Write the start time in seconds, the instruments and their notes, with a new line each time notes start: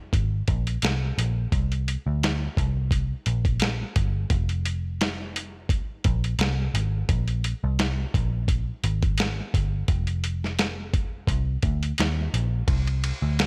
0.13 picked electric bass G#1, kick, closed hi-hat
0.48 picked electric bass A#1, kick, closed hi-hat
0.67 closed hi-hat
0.82 picked electric bass C2, snare, closed hi-hat
1.18 picked electric bass A#1, closed hi-hat
1.52 picked electric bass C2, kick, closed hi-hat
1.72 closed hi-hat
1.88 closed hi-hat
2.06 picked electric bass D2
2.23 snare, closed hi-hat
2.57 picked electric bass C2, kick, closed hi-hat
2.91 kick, closed hi-hat
3.26 picked electric bass A#1, closed hi-hat
3.45 kick, closed hi-hat
3.60 snare, closed hi-hat
3.96 picked electric bass G1, kick, closed hi-hat
4.30 picked electric bass F1, kick, closed hi-hat
4.49 closed hi-hat
4.66 closed hi-hat
5.01 snare, closed hi-hat
5.36 closed hi-hat
5.69 picked electric bass G#1, kick, closed hi-hat
6.04 picked electric bass A#1, kick, closed hi-hat
6.24 closed hi-hat
6.39 picked electric bass C2, snare, closed hi-hat
6.74 picked electric bass G#1, closed hi-hat
7.09 picked electric bass A#1, kick, closed hi-hat
7.28 closed hi-hat
7.44 closed hi-hat
7.64 picked electric bass C2
7.79 snare, closed hi-hat
8.14 picked electric bass A#1, kick, closed hi-hat
8.48 kick, closed hi-hat
8.84 picked electric bass G#1, closed hi-hat
9.02 kick, closed hi-hat
9.18 snare, closed hi-hat
9.54 picked electric bass G1, kick, closed hi-hat
9.88 picked electric bass F1, kick, closed hi-hat
10.07 closed hi-hat
10.24 closed hi-hat
10.44 snare
10.59 snare, closed hi-hat
10.94 kick, closed hi-hat
11.27 picked electric bass C2, kick, closed hi-hat
11.62 picked electric bass D2, kick, closed hi-hat
11.83 closed hi-hat
11.98 picked electric bass D#2, snare, closed hi-hat
12.34 picked electric bass A#1, closed hi-hat
12.67 picked electric bass C2, kick, ride
12.87 ride
13.04 ride
13.22 picked electric bass D2
13.39 snare, ride